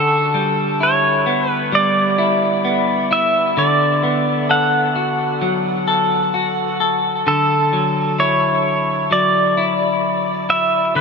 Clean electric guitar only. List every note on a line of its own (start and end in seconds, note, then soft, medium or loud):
0.00 3.56 D3 medium
0.00 0.15 B3 medium
0.34 1.71 G3 medium
0.80 2.17 E4 medium
1.26 2.64 B3 medium
1.72 3.66 G3 medium
2.18 3.10 E4 medium
2.65 4.03 B3 medium
3.11 3.66 E4 medium
3.57 7.25 D3 medium
4.03 7.36 B3 medium
4.49 5.87 A4 medium
4.96 6.34 F#4 medium
5.41 7.72 F#3 medium
5.88 6.80 A4 medium
6.34 8.19 F#4 medium
6.80 10.30 A4 medium
7.27 10.94 D3 medium
7.73 9.10 F#3 medium
8.19 9.56 E4 medium
9.11 11.01 F#3 medium
9.57 10.48 E4 medium
10.49 11.01 E4 medium
10.95 11.01 D3 medium